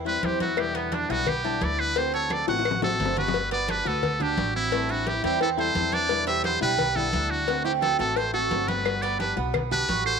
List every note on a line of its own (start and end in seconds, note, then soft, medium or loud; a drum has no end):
0.00 0.19 E2 loud
0.05 0.22 G3 medium
0.05 0.22 C4 medium
0.05 0.22 E4 medium
0.05 0.27 B4 loud
0.05 0.40 C5 medium
0.05 high conga soft
0.22 1.04 E2 medium
0.22 0.57 E3 medium
0.22 0.56 G3 medium
0.22 0.57 C4 medium
0.22 0.57 E4 medium
0.22 0.41 G4 medium
0.22 cowbell medium
0.22 high conga medium
0.40 0.74 E4 medium
0.40 0.62 F#4 medium
0.40 cowbell medium
0.40 high conga medium
0.57 1.08 B2 medium
0.57 1.09 D3 medium
0.57 1.09 G3 medium
0.57 1.09 B3 medium
0.57 1.08 E4 medium
0.57 0.77 G4 medium
0.57 cowbell loud
0.57 high conga soft
0.57 claves medium
0.75 0.92 B3 medium
0.75 0.96 B3 medium
0.75 cowbell medium
0.75 high conga soft
0.92 1.09 D4 medium
0.92 1.12 D4 medium
0.92 cowbell medium
0.92 high conga medium
1.09 1.58 B1 medium
1.09 1.26 D3 soft
1.09 1.26 G3 medium
1.09 1.26 B3 medium
1.09 1.43 B3 loud
1.09 1.26 E4 medium
1.09 1.30 F#4 loud
1.09 high conga soft
1.27 1.65 G4 medium
1.27 muted nylon-string guitar stroke medium
1.27 cowbell loud
1.27 high conga soft
1.27 low conga medium
1.27 claves medium
1.44 1.60 D3 medium
1.44 1.61 G3 medium
1.44 1.61 B3 medium
1.44 1.61 D4 medium
1.44 1.61 E4 medium
1.44 high conga soft
1.61 2.42 D2 loud
1.61 1.94 D3 medium
1.61 1.96 G3 soft
1.61 1.96 B3 medium
1.61 1.95 E4 medium
1.61 1.96 E4 medium
1.61 1.81 D5 medium
1.61 cowbell medium
1.61 high conga medium
1.79 2.00 B4 loud
1.79 high conga soft
1.79 claves medium
1.95 2.47 D3 medium
1.95 2.47 A3 medium
1.95 2.13 C4 medium
1.95 2.47 C4 medium
1.95 2.46 F#4 medium
1.95 2.14 C5 medium
1.95 cowbell loud
1.95 high conga soft
2.13 2.47 A4 medium
2.13 2.35 C#5 medium
2.13 high conga soft
2.30 2.48 D5 medium
2.30 cowbell medium
2.30 high conga medium
2.30 claves medium
2.47 2.96 A1 loud
2.47 2.64 A3 medium
2.47 2.64 C4 medium
2.47 2.64 F#4 medium
2.47 2.81 F#4 medium
2.47 2.80 F#5 loud
2.47 cowbell medium
2.47 high bongo medium
2.47 high conga soft
2.59 high bongo medium
2.65 muted nylon-string guitar stroke medium
2.65 cowbell loud
2.65 high conga soft
2.65 claves medium
2.71 low bongo medium
2.82 2.99 A3 medium
2.82 2.99 C4 medium
2.82 2.99 F#4 medium
2.82 3.15 F#4 medium
2.82 3.15 A4 medium
2.82 3.16 C5 medium
2.82 low bongo loud
2.82 high conga medium
2.99 3.80 G1 loud
2.99 3.34 D3 medium
2.99 3.34 A3 medium
2.99 3.34 C4 medium
2.99 3.34 F#4 medium
2.99 cowbell medium
2.99 low conga medium
3.05 low bongo medium
3.17 3.34 F#4 medium
3.17 3.49 G4 medium
3.17 3.50 B4 medium
3.17 cowbell medium
3.17 low conga medium
3.28 low bongo loud
3.34 3.88 G3 medium
3.34 3.87 B3 medium
3.34 3.84 F#4 medium
3.34 cowbell loud
3.34 high conga soft
3.51 3.68 B3 medium
3.51 3.69 B4 medium
3.51 3.72 D5 medium
3.51 cowbell medium
3.51 high conga soft
3.69 3.85 D4 medium
3.69 3.87 G4 medium
3.69 3.89 B4 medium
3.69 cowbell medium
3.69 high conga medium
3.85 4.34 D2 loud
3.85 4.19 B3 loud
3.85 4.02 B3 medium
3.85 4.02 F#4 medium
3.85 4.21 F#4 medium
3.85 4.24 A4 medium
3.85 high conga soft
4.03 muted nylon-string guitar stroke medium
4.03 cowbell loud
4.03 high conga soft
4.03 low conga medium
4.20 4.36 B3 medium
4.20 4.37 D4 medium
4.20 4.55 D4 medium
4.20 4.37 F#4 medium
4.20 4.55 G4 medium
4.20 high conga soft
4.20 low conga medium
4.37 5.18 A1 loud
4.37 4.71 G3 medium
4.37 4.71 B3 medium
4.37 4.71 F#4 medium
4.37 4.72 F#4 medium
4.37 cowbell medium
4.37 high conga medium
4.55 4.89 C4 medium
4.55 4.92 E4 medium
4.55 high conga soft
4.71 5.41 E3 medium
4.71 5.24 G3 medium
4.71 4.89 A3 medium
4.71 5.23 C4 medium
4.71 5.23 E4 medium
4.71 cowbell loud
4.71 high conga soft
4.89 5.07 D4 medium
4.89 5.23 E4 medium
4.89 5.09 F#4 medium
4.89 high conga soft
5.07 5.23 E4 medium
5.07 5.24 G4 loud
5.07 cowbell medium
5.07 high conga medium
5.23 5.72 E2 loud
5.23 5.40 G3 medium
5.23 5.57 C4 medium
5.23 5.40 C4 medium
5.23 5.40 E4 medium
5.23 5.40 G4 loud
5.23 cowbell medium
5.23 high conga soft
5.41 5.46 E4 medium
5.41 5.50 A4 medium
5.41 muted nylon-string guitar stroke medium
5.41 cowbell loud
5.41 high conga soft
5.57 5.74 G3 medium
5.57 5.75 C4 medium
5.57 5.74 E4 medium
5.57 5.92 A4 medium
5.57 5.95 C5 loud
5.57 high conga soft
5.75 6.56 E2 loud
5.75 6.09 E3 medium
5.75 6.08 G3 medium
5.75 6.10 C4 medium
5.75 6.09 E4 medium
5.75 cowbell medium
5.75 high conga medium
5.92 6.26 D4 medium
5.92 6.27 B4 medium
5.92 6.27 D5 loud
5.92 cowbell medium
5.92 high conga medium
6.09 6.60 B2 medium
6.09 6.61 D3 medium
6.09 6.60 G3 medium
6.09 6.60 B3 medium
6.09 6.59 E4 medium
6.09 cowbell loud
6.09 high conga soft
6.27 6.44 G3 loud
6.27 6.43 C5 loud
6.27 6.43 E5 loud
6.27 cowbell medium
6.27 high conga soft
6.44 6.61 B3 medium
6.44 6.60 G4 medium
6.44 6.61 C5 loud
6.44 cowbell medium
6.44 high conga medium
6.61 7.09 B1 loud
6.61 6.77 D3 medium
6.61 6.77 G3 medium
6.61 6.95 G3 medium
6.61 6.77 B3 medium
6.61 6.78 E4 medium
6.61 6.96 G4 medium
6.61 6.98 B4 loud
6.61 high conga soft
6.78 muted nylon-string guitar stroke medium
6.78 cowbell loud
6.78 high conga soft
6.78 low conga medium
6.95 7.11 D3 medium
6.95 7.12 G3 medium
6.95 7.12 B3 medium
6.95 7.13 B3 medium
6.95 7.12 E4 medium
6.95 7.30 E4 medium
6.95 7.32 A4 loud
6.95 high conga soft
6.95 low conga medium
7.12 7.93 D2 loud
7.12 7.46 D3 medium
7.12 7.47 G3 medium
7.12 7.47 B3 medium
7.12 7.47 D4 medium
7.12 7.47 E4 medium
7.12 cowbell medium
7.12 high conga medium
7.30 7.65 D4 medium
7.30 7.64 F#4 loud
7.30 high conga soft
7.47 7.98 D3 medium
7.47 7.98 A3 medium
7.47 7.98 C4 medium
7.47 7.65 F#4 medium
7.47 7.98 F#4 medium
7.47 cowbell loud
7.47 high conga soft
7.64 7.99 C4 medium
7.64 7.69 E4 medium
7.64 7.73 G4 medium
7.64 high conga soft
7.82 7.98 F#4 medium
7.82 7.98 A4 loud
7.82 cowbell medium
7.82 high conga medium
7.99 8.47 A1 medium
7.99 8.33 A3 medium
7.99 8.15 A3 medium
7.99 8.16 C4 medium
7.99 8.15 F#4 medium
7.99 8.16 F#4 medium
7.99 8.19 A4 loud
7.99 cowbell medium
7.99 high conga soft
8.16 8.33 A4 medium
8.16 8.33 C5 medium
8.16 muted nylon-string guitar stroke medium
8.16 cowbell loud
8.16 high conga soft
8.34 8.50 A3 medium
8.34 8.50 C4 medium
8.34 8.50 F#4 medium
8.34 8.67 F#4 medium
8.34 8.68 F#4 medium
8.34 8.70 A4 medium
8.34 high conga soft
8.51 9.31 G1 loud
8.51 8.85 D3 medium
8.51 8.84 A3 soft
8.51 8.85 C4 medium
8.51 8.85 F#4 medium
8.51 cowbell medium
8.51 high conga medium
8.68 9.02 G4 medium
8.68 9.04 B4 medium
8.68 9.02 F#5 medium
8.68 cowbell medium
8.68 high conga medium
8.85 9.39 G3 medium
8.85 9.38 B3 medium
8.85 9.35 F#4 medium
8.85 cowbell loud
8.85 high conga soft
8.85 claves medium
9.02 9.19 B3 loud
9.02 9.19 B4 medium
9.02 9.19 D5 medium
9.02 cowbell medium
9.02 high conga soft
9.19 9.36 D4 medium
9.19 9.35 G4 medium
9.19 9.36 B4 medium
9.19 cowbell medium
9.19 high conga medium
9.36 9.85 B1 loud
9.36 9.70 B3 medium
9.36 9.53 B3 medium
9.36 9.53 F#4 medium
9.36 high conga soft
9.54 muted nylon-string guitar stroke medium
9.54 cowbell loud
9.54 high conga soft
9.54 low conga medium
9.54 claves medium
9.71 9.88 B3 medium
9.71 9.88 D4 medium
9.71 9.88 F#4 medium
9.71 10.03 G4 medium
9.71 10.04 B4 loud
9.71 high conga soft
9.71 low conga medium
9.89 10.20 A1 loud
9.89 10.20 G3 medium
9.89 10.20 B3 medium
9.89 10.20 F#4 medium
9.89 cowbell medium
9.89 high conga medium
10.06 10.20 A4 medium
10.06 10.20 C5 loud
10.06 high conga soft
10.06 claves medium